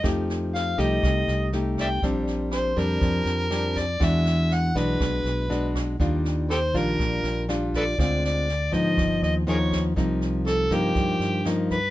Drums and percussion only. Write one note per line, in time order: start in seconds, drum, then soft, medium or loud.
0.04 kick medium
0.04 cross-stick medium
0.04 snare soft
0.30 snare soft
0.55 snare soft
0.79 kick soft
0.79 snare soft
1.03 kick medium
1.03 cross-stick medium
1.03 snare soft
1.28 snare soft
1.52 snare soft
1.78 kick soft
1.78 cross-stick medium
1.78 snare soft
2.02 kick medium
2.02 snare soft
2.27 snare soft
2.51 cross-stick medium
2.51 snare soft
2.77 kick soft
2.77 snare soft
3.01 kick medium
3.01 snare soft
3.26 snare soft
3.51 cross-stick medium
3.51 snare soft
3.76 kick soft
3.76 snare soft
4.01 kick medium
4.01 cross-stick medium
4.01 snare soft
4.26 snare soft
4.51 snare soft
4.75 kick soft
4.75 snare soft
5.00 kick medium
5.00 cross-stick medium
5.00 snare soft
5.25 snare soft
5.51 snare soft
5.75 kick soft
5.75 cross-stick medium
5.75 snare soft
6.00 kick medium
6.00 snare soft
6.25 snare soft
6.50 cross-stick medium
6.50 snare soft
6.74 kick soft
6.74 snare soft
6.99 kick medium
6.99 snare soft
7.24 snare soft
7.49 cross-stick medium
7.49 snare soft
7.73 kick soft
7.73 snare soft
7.98 kick medium
7.98 cross-stick medium
7.98 snare soft
8.24 snare soft
8.49 snare soft
8.73 kick soft
8.73 snare soft
8.97 kick medium
8.97 cross-stick medium
8.97 snare soft
9.23 snare soft
9.47 snare soft
9.72 kick soft
9.72 cross-stick medium
9.72 snare soft
9.97 kick medium
9.97 snare soft
10.21 snare soft
10.46 cross-stick medium
10.46 snare soft
10.71 kick soft
10.71 snare soft
10.95 kick medium
10.95 snare soft
11.21 snare soft
11.45 cross-stick medium
11.45 snare soft
11.70 kick soft
11.70 snare soft